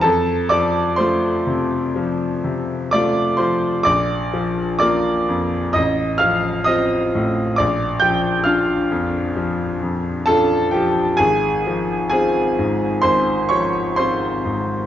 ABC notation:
X:1
M:4/4
L:1/8
Q:1/4=65
K:Bblyd
V:1 name="Grand piano"
[Aa] [dd'] [cc']3 z [dd'] [cc'] | [dd']2 [dd']2 [_e_e'] [ff'] [ee']2 | [dd'] [gg'] [ff']3 z [Aa] [Gg] | [K:Fm] [Aa]2 [Aa]2 [cc'] [dd'] [cc']2 |]
V:2 name="Grand piano" clef=bass
F,, F, [A,F] C, F, C, [A,F] F, | B,,, F, [B,F] F,, A,,, F, [CF] A,, | B,,, F, [DF] F,, F, F,, [DF] F, | [K:Fm] A,,, F, [CF] A,, A,,, F, [CF] A,, |]